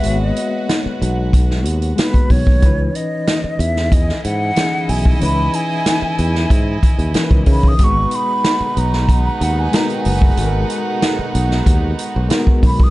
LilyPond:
<<
  \new Staff \with { instrumentName = "Flute" } { \time 4/4 \key gis \minor \tempo 4 = 93 e''16 dis''4 r4. r16 b'8 cis''8~ | cis''8 dis''4 e''8 dis''8 fis''4 gis''8 | b''8 gis''4. r4. b''16 dis'''16 | cis'''8 b''4 ais''4 fis''16 gis''16 ais''16 gis''8.~ |
gis''8. r2 r8. b''16 dis'''16 | }
  \new Staff \with { instrumentName = "Violin section" } { \time 4/4 \key gis \minor <fis' b' fis''>1 | r2 <e' dis'' gis''>2~ | <e' dis'' gis''>1 | <dis' b' fis''>1~ |
<dis' b' fis''>1 | }
  \new Staff \with { instrumentName = "Reed electric piano" } { \time 4/4 \key gis \minor <gis ais b fis' cis''>4. r4. <gis ais b fis' b'>8 r8 | <e cis' dis' b'>4. r4. <e cis' dis' gis'>8 r8 | <e cis' dis' b'>4. r4. <e cis' dis' ais' b'>8 r8 | <gis b fis' gis' b'>4. r4. <gis b fis' ais'>8 r8 |
<gis b fis' a' ais'>4. r4. <gis b fis' ais'>8 r8 | }
  \new Staff \with { instrumentName = "String section" } { \time 4/4 \key gis \minor r1 | r1 | r1 | <b, gis b fis'>1~ |
<b, gis b fis'>1 | }
  \new Staff \with { instrumentName = "Fingered electric bass" } { \clef bass \time 4/4 \key gis \minor gis,,8 r4 b,,4 dis,8 r8 b,,8 | cis,8 r4 e,4 gis,8 r8 b,,8 | cis,8 r4 e,8 gis,8 r16 dis,16 r16 cis,16 cis8 | gis,,8 r4 b,,4 dis,8 r8 fis,,8 |
gis,,8 r4 b,,8 dis,8 r16 b,,16 r8 b,,8 | }
  \new DrumStaff \with { instrumentName = "Drums" } \drummode { \time 4/4 hh8 hh8 <hh sn>8 hh8 <hh bd>16 sn16 hh16 hh16 <hh sn>16 <hh bd>16 <hho bd>16 bd16 | <hh bd>8 hh8 <hh sn>8 hh16 sn16 <hh bd>16 sn16 hh8 <hh sn>8 hho16 bd16 | hh8 hh8 <hh sn>8 hh16 sn16 <hh bd>8 <hh bd>16 hh16 <hh sn>16 <hh bd>16 <hho bd>16 bd16 | <hh bd>8 hh8 <hh sn>8 hh16 sn16 <hh bd>8 hh8 <hh sn>16 hh16 hho16 bd16 |
hh8 hh8 <hh sn>8 hh16 sn16 <hh bd>8 hh8 <hh sn>16 bd16 <hho bd>16 bd16 | }
>>